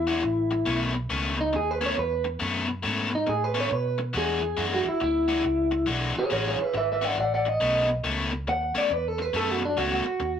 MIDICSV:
0, 0, Header, 1, 6, 480
1, 0, Start_track
1, 0, Tempo, 432900
1, 747, Time_signature, 4, 2, 24, 8
1, 11527, End_track
2, 0, Start_track
2, 0, Title_t, "Clean electric guitar"
2, 0, Program_c, 0, 27
2, 0, Note_on_c, 0, 64, 96
2, 883, Note_off_c, 0, 64, 0
2, 1559, Note_on_c, 0, 63, 91
2, 1710, Note_off_c, 0, 63, 0
2, 1728, Note_on_c, 0, 68, 92
2, 1894, Note_off_c, 0, 68, 0
2, 1894, Note_on_c, 0, 71, 82
2, 2038, Note_off_c, 0, 71, 0
2, 2060, Note_on_c, 0, 73, 86
2, 2201, Note_off_c, 0, 73, 0
2, 2207, Note_on_c, 0, 71, 100
2, 2501, Note_off_c, 0, 71, 0
2, 3493, Note_on_c, 0, 63, 83
2, 3640, Note_off_c, 0, 63, 0
2, 3650, Note_on_c, 0, 68, 89
2, 3815, Note_off_c, 0, 68, 0
2, 3815, Note_on_c, 0, 71, 85
2, 3961, Note_off_c, 0, 71, 0
2, 3996, Note_on_c, 0, 73, 87
2, 4133, Note_off_c, 0, 73, 0
2, 4133, Note_on_c, 0, 71, 98
2, 4426, Note_off_c, 0, 71, 0
2, 4629, Note_on_c, 0, 68, 95
2, 5235, Note_off_c, 0, 68, 0
2, 5259, Note_on_c, 0, 66, 106
2, 5404, Note_off_c, 0, 66, 0
2, 5417, Note_on_c, 0, 64, 95
2, 5563, Note_off_c, 0, 64, 0
2, 5582, Note_on_c, 0, 64, 97
2, 6502, Note_off_c, 0, 64, 0
2, 6858, Note_on_c, 0, 68, 84
2, 6866, Note_on_c, 0, 73, 77
2, 6997, Note_off_c, 0, 68, 0
2, 7006, Note_off_c, 0, 73, 0
2, 7011, Note_on_c, 0, 68, 78
2, 7018, Note_on_c, 0, 73, 91
2, 7154, Note_off_c, 0, 68, 0
2, 7164, Note_off_c, 0, 73, 0
2, 7184, Note_on_c, 0, 68, 79
2, 7189, Note_on_c, 0, 73, 101
2, 7321, Note_off_c, 0, 68, 0
2, 7338, Note_off_c, 0, 73, 0
2, 7338, Note_on_c, 0, 71, 73
2, 7354, Note_on_c, 0, 76, 84
2, 7488, Note_off_c, 0, 71, 0
2, 7492, Note_off_c, 0, 76, 0
2, 7504, Note_on_c, 0, 71, 83
2, 7512, Note_on_c, 0, 76, 95
2, 7642, Note_off_c, 0, 71, 0
2, 7649, Note_off_c, 0, 76, 0
2, 7672, Note_on_c, 0, 71, 74
2, 7682, Note_on_c, 0, 76, 86
2, 7811, Note_off_c, 0, 71, 0
2, 7811, Note_on_c, 0, 74, 77
2, 7817, Note_off_c, 0, 76, 0
2, 7817, Note_on_c, 0, 78, 93
2, 7963, Note_off_c, 0, 78, 0
2, 7964, Note_off_c, 0, 74, 0
2, 7984, Note_on_c, 0, 74, 71
2, 7989, Note_on_c, 0, 78, 82
2, 8121, Note_off_c, 0, 74, 0
2, 8128, Note_off_c, 0, 78, 0
2, 8139, Note_on_c, 0, 74, 76
2, 8147, Note_on_c, 0, 78, 85
2, 8278, Note_off_c, 0, 74, 0
2, 8301, Note_off_c, 0, 78, 0
2, 8301, Note_on_c, 0, 75, 96
2, 8754, Note_off_c, 0, 75, 0
2, 9415, Note_on_c, 0, 78, 116
2, 9715, Note_off_c, 0, 78, 0
2, 9734, Note_on_c, 0, 74, 87
2, 9903, Note_off_c, 0, 74, 0
2, 9903, Note_on_c, 0, 71, 96
2, 10068, Note_off_c, 0, 71, 0
2, 10068, Note_on_c, 0, 69, 86
2, 10222, Note_off_c, 0, 69, 0
2, 10222, Note_on_c, 0, 71, 99
2, 10363, Note_off_c, 0, 71, 0
2, 10381, Note_on_c, 0, 69, 98
2, 10546, Note_off_c, 0, 69, 0
2, 10546, Note_on_c, 0, 66, 89
2, 10685, Note_off_c, 0, 66, 0
2, 10704, Note_on_c, 0, 62, 93
2, 10842, Note_on_c, 0, 66, 93
2, 10843, Note_off_c, 0, 62, 0
2, 10984, Note_off_c, 0, 66, 0
2, 10997, Note_on_c, 0, 66, 107
2, 11527, Note_off_c, 0, 66, 0
2, 11527, End_track
3, 0, Start_track
3, 0, Title_t, "Overdriven electric guitar"
3, 0, Program_c, 1, 29
3, 79, Note_on_c, 1, 66, 90
3, 86, Note_on_c, 1, 62, 84
3, 88, Note_on_c, 1, 56, 76
3, 94, Note_on_c, 1, 52, 73
3, 238, Note_off_c, 1, 52, 0
3, 241, Note_off_c, 1, 56, 0
3, 243, Note_off_c, 1, 62, 0
3, 246, Note_off_c, 1, 66, 0
3, 727, Note_on_c, 1, 47, 81
3, 734, Note_on_c, 1, 51, 88
3, 740, Note_on_c, 1, 57, 74
3, 742, Note_on_c, 1, 61, 76
3, 1030, Note_off_c, 1, 61, 0
3, 1033, Note_off_c, 1, 57, 0
3, 1041, Note_off_c, 1, 51, 0
3, 1048, Note_off_c, 1, 47, 0
3, 1216, Note_on_c, 1, 47, 69
3, 1220, Note_on_c, 1, 51, 81
3, 1223, Note_on_c, 1, 57, 76
3, 1229, Note_on_c, 1, 61, 94
3, 1513, Note_off_c, 1, 61, 0
3, 1519, Note_off_c, 1, 57, 0
3, 1522, Note_off_c, 1, 51, 0
3, 1533, Note_off_c, 1, 47, 0
3, 2006, Note_on_c, 1, 61, 91
3, 2014, Note_on_c, 1, 57, 88
3, 2015, Note_on_c, 1, 51, 78
3, 2020, Note_on_c, 1, 47, 75
3, 2164, Note_off_c, 1, 47, 0
3, 2165, Note_off_c, 1, 51, 0
3, 2168, Note_off_c, 1, 57, 0
3, 2170, Note_off_c, 1, 61, 0
3, 2656, Note_on_c, 1, 47, 78
3, 2660, Note_on_c, 1, 51, 82
3, 2663, Note_on_c, 1, 57, 88
3, 2669, Note_on_c, 1, 61, 89
3, 2956, Note_off_c, 1, 61, 0
3, 2958, Note_off_c, 1, 57, 0
3, 2965, Note_off_c, 1, 51, 0
3, 2975, Note_off_c, 1, 47, 0
3, 3133, Note_on_c, 1, 47, 67
3, 3139, Note_on_c, 1, 51, 70
3, 3141, Note_on_c, 1, 57, 83
3, 3147, Note_on_c, 1, 61, 85
3, 3434, Note_off_c, 1, 61, 0
3, 3439, Note_off_c, 1, 57, 0
3, 3443, Note_off_c, 1, 51, 0
3, 3454, Note_off_c, 1, 47, 0
3, 3929, Note_on_c, 1, 61, 83
3, 3931, Note_on_c, 1, 57, 87
3, 3937, Note_on_c, 1, 51, 83
3, 3941, Note_on_c, 1, 47, 73
3, 4093, Note_off_c, 1, 47, 0
3, 4095, Note_off_c, 1, 57, 0
3, 4096, Note_off_c, 1, 51, 0
3, 4099, Note_off_c, 1, 61, 0
3, 4583, Note_on_c, 1, 52, 70
3, 4591, Note_on_c, 1, 56, 89
3, 4592, Note_on_c, 1, 62, 77
3, 4595, Note_on_c, 1, 66, 91
3, 4886, Note_off_c, 1, 66, 0
3, 4889, Note_off_c, 1, 62, 0
3, 4893, Note_off_c, 1, 56, 0
3, 4900, Note_off_c, 1, 52, 0
3, 5065, Note_on_c, 1, 52, 86
3, 5070, Note_on_c, 1, 56, 70
3, 5076, Note_on_c, 1, 62, 74
3, 5078, Note_on_c, 1, 66, 76
3, 5363, Note_off_c, 1, 66, 0
3, 5369, Note_off_c, 1, 62, 0
3, 5372, Note_off_c, 1, 56, 0
3, 5382, Note_off_c, 1, 52, 0
3, 5856, Note_on_c, 1, 66, 92
3, 5859, Note_on_c, 1, 62, 79
3, 5865, Note_on_c, 1, 56, 77
3, 5868, Note_on_c, 1, 52, 76
3, 6015, Note_off_c, 1, 52, 0
3, 6019, Note_off_c, 1, 62, 0
3, 6021, Note_off_c, 1, 56, 0
3, 6024, Note_off_c, 1, 66, 0
3, 6499, Note_on_c, 1, 52, 77
3, 6506, Note_on_c, 1, 56, 83
3, 6510, Note_on_c, 1, 62, 85
3, 6513, Note_on_c, 1, 66, 82
3, 6807, Note_off_c, 1, 66, 0
3, 6810, Note_off_c, 1, 62, 0
3, 6815, Note_off_c, 1, 56, 0
3, 6819, Note_off_c, 1, 52, 0
3, 6986, Note_on_c, 1, 52, 70
3, 6992, Note_on_c, 1, 56, 81
3, 6994, Note_on_c, 1, 62, 81
3, 6997, Note_on_c, 1, 66, 82
3, 7284, Note_off_c, 1, 66, 0
3, 7289, Note_off_c, 1, 56, 0
3, 7290, Note_off_c, 1, 62, 0
3, 7302, Note_off_c, 1, 52, 0
3, 7779, Note_on_c, 1, 66, 89
3, 7786, Note_on_c, 1, 62, 93
3, 7789, Note_on_c, 1, 56, 82
3, 7794, Note_on_c, 1, 52, 80
3, 7943, Note_off_c, 1, 56, 0
3, 7944, Note_off_c, 1, 52, 0
3, 7945, Note_off_c, 1, 62, 0
3, 7949, Note_off_c, 1, 66, 0
3, 8432, Note_on_c, 1, 47, 88
3, 8437, Note_on_c, 1, 51, 89
3, 8441, Note_on_c, 1, 57, 93
3, 8442, Note_on_c, 1, 61, 95
3, 8730, Note_off_c, 1, 61, 0
3, 8736, Note_off_c, 1, 57, 0
3, 8741, Note_off_c, 1, 51, 0
3, 8744, Note_off_c, 1, 47, 0
3, 8912, Note_on_c, 1, 47, 74
3, 8915, Note_on_c, 1, 51, 80
3, 8920, Note_on_c, 1, 57, 89
3, 8925, Note_on_c, 1, 61, 76
3, 9211, Note_off_c, 1, 61, 0
3, 9217, Note_off_c, 1, 57, 0
3, 9224, Note_off_c, 1, 47, 0
3, 9225, Note_off_c, 1, 51, 0
3, 9698, Note_on_c, 1, 61, 100
3, 9704, Note_on_c, 1, 57, 92
3, 9709, Note_on_c, 1, 51, 85
3, 9711, Note_on_c, 1, 47, 74
3, 9860, Note_off_c, 1, 47, 0
3, 9868, Note_off_c, 1, 51, 0
3, 9869, Note_off_c, 1, 57, 0
3, 9871, Note_off_c, 1, 61, 0
3, 10350, Note_on_c, 1, 47, 85
3, 10360, Note_on_c, 1, 51, 85
3, 10363, Note_on_c, 1, 57, 98
3, 10368, Note_on_c, 1, 61, 89
3, 10651, Note_off_c, 1, 61, 0
3, 10657, Note_off_c, 1, 57, 0
3, 10659, Note_off_c, 1, 51, 0
3, 10661, Note_off_c, 1, 47, 0
3, 10831, Note_on_c, 1, 47, 68
3, 10837, Note_on_c, 1, 51, 73
3, 10842, Note_on_c, 1, 57, 85
3, 10844, Note_on_c, 1, 61, 86
3, 11132, Note_off_c, 1, 61, 0
3, 11137, Note_off_c, 1, 57, 0
3, 11140, Note_off_c, 1, 47, 0
3, 11140, Note_off_c, 1, 51, 0
3, 11527, End_track
4, 0, Start_track
4, 0, Title_t, "Fingered electric bass"
4, 0, Program_c, 2, 33
4, 0, Note_on_c, 2, 40, 90
4, 247, Note_off_c, 2, 40, 0
4, 266, Note_on_c, 2, 33, 87
4, 733, Note_off_c, 2, 33, 0
4, 746, Note_on_c, 2, 35, 90
4, 1213, Note_off_c, 2, 35, 0
4, 1227, Note_on_c, 2, 37, 84
4, 1694, Note_off_c, 2, 37, 0
4, 1707, Note_on_c, 2, 39, 86
4, 2175, Note_off_c, 2, 39, 0
4, 2194, Note_on_c, 2, 40, 88
4, 2659, Note_off_c, 2, 40, 0
4, 2671, Note_on_c, 2, 42, 86
4, 3138, Note_off_c, 2, 42, 0
4, 3154, Note_on_c, 2, 44, 80
4, 3620, Note_off_c, 2, 44, 0
4, 3641, Note_on_c, 2, 45, 77
4, 4104, Note_off_c, 2, 45, 0
4, 4120, Note_on_c, 2, 47, 89
4, 4584, Note_off_c, 2, 47, 0
4, 4598, Note_on_c, 2, 40, 84
4, 5063, Note_off_c, 2, 40, 0
4, 5077, Note_on_c, 2, 42, 76
4, 5366, Note_off_c, 2, 42, 0
4, 5560, Note_on_c, 2, 38, 82
4, 6025, Note_off_c, 2, 38, 0
4, 6040, Note_on_c, 2, 37, 96
4, 6505, Note_off_c, 2, 37, 0
4, 6519, Note_on_c, 2, 35, 94
4, 6807, Note_off_c, 2, 35, 0
4, 7002, Note_on_c, 2, 33, 83
4, 7289, Note_off_c, 2, 33, 0
4, 7477, Note_on_c, 2, 32, 85
4, 7943, Note_off_c, 2, 32, 0
4, 7959, Note_on_c, 2, 33, 97
4, 8423, Note_off_c, 2, 33, 0
4, 8442, Note_on_c, 2, 35, 91
4, 8904, Note_off_c, 2, 35, 0
4, 8917, Note_on_c, 2, 37, 80
4, 9381, Note_off_c, 2, 37, 0
4, 9398, Note_on_c, 2, 39, 92
4, 9685, Note_off_c, 2, 39, 0
4, 9874, Note_on_c, 2, 40, 89
4, 10338, Note_off_c, 2, 40, 0
4, 10353, Note_on_c, 2, 42, 89
4, 10817, Note_off_c, 2, 42, 0
4, 10827, Note_on_c, 2, 37, 73
4, 11116, Note_off_c, 2, 37, 0
4, 11308, Note_on_c, 2, 39, 95
4, 11527, Note_off_c, 2, 39, 0
4, 11527, End_track
5, 0, Start_track
5, 0, Title_t, "Muted fingered electric bass strokes"
5, 5390, Note_on_c, 9, 29, 34
5, 5501, Note_off_c, 9, 29, 0
5, 9707, Note_on_c, 9, 29, 42
5, 9818, Note_off_c, 9, 29, 0
5, 11527, End_track
6, 0, Start_track
6, 0, Title_t, "Muted overdriven electric guitar strokes"
6, 251, Note_on_c, 9, 29, 48
6, 362, Note_off_c, 9, 29, 0
6, 563, Note_on_c, 9, 29, 50
6, 674, Note_off_c, 9, 29, 0
6, 1043, Note_on_c, 9, 29, 50
6, 1154, Note_off_c, 9, 29, 0
6, 1526, Note_on_c, 9, 29, 47
6, 1637, Note_off_c, 9, 29, 0
6, 1694, Note_on_c, 9, 29, 41
6, 1805, Note_off_c, 9, 29, 0
6, 2177, Note_on_c, 9, 29, 40
6, 2288, Note_off_c, 9, 29, 0
6, 2488, Note_on_c, 9, 29, 46
6, 2599, Note_off_c, 9, 29, 0
6, 2970, Note_on_c, 9, 29, 48
6, 3080, Note_off_c, 9, 29, 0
6, 3447, Note_on_c, 9, 29, 53
6, 3558, Note_off_c, 9, 29, 0
6, 3620, Note_on_c, 9, 29, 45
6, 3731, Note_off_c, 9, 29, 0
6, 4107, Note_on_c, 9, 29, 42
6, 4218, Note_off_c, 9, 29, 0
6, 4413, Note_on_c, 9, 29, 45
6, 4524, Note_off_c, 9, 29, 0
6, 4900, Note_on_c, 9, 29, 52
6, 5010, Note_off_c, 9, 29, 0
6, 5376, Note_on_c, 9, 29, 46
6, 5487, Note_off_c, 9, 29, 0
6, 5548, Note_on_c, 9, 29, 44
6, 5659, Note_off_c, 9, 29, 0
6, 6029, Note_on_c, 9, 29, 52
6, 6140, Note_off_c, 9, 29, 0
6, 6334, Note_on_c, 9, 29, 39
6, 6445, Note_off_c, 9, 29, 0
6, 6821, Note_on_c, 9, 29, 54
6, 6931, Note_off_c, 9, 29, 0
6, 7297, Note_on_c, 9, 29, 49
6, 7408, Note_off_c, 9, 29, 0
6, 7469, Note_on_c, 9, 29, 40
6, 7580, Note_off_c, 9, 29, 0
6, 7956, Note_on_c, 9, 29, 43
6, 8067, Note_off_c, 9, 29, 0
6, 8265, Note_on_c, 9, 29, 45
6, 8376, Note_off_c, 9, 29, 0
6, 8744, Note_on_c, 9, 29, 50
6, 8855, Note_off_c, 9, 29, 0
6, 9225, Note_on_c, 9, 29, 50
6, 9336, Note_off_c, 9, 29, 0
6, 9395, Note_on_c, 9, 29, 44
6, 9506, Note_off_c, 9, 29, 0
6, 9874, Note_on_c, 9, 29, 42
6, 9985, Note_off_c, 9, 29, 0
6, 10183, Note_on_c, 9, 29, 53
6, 10294, Note_off_c, 9, 29, 0
6, 10665, Note_on_c, 9, 29, 52
6, 10776, Note_off_c, 9, 29, 0
6, 11146, Note_on_c, 9, 29, 53
6, 11257, Note_off_c, 9, 29, 0
6, 11306, Note_on_c, 9, 29, 38
6, 11417, Note_off_c, 9, 29, 0
6, 11527, End_track
0, 0, End_of_file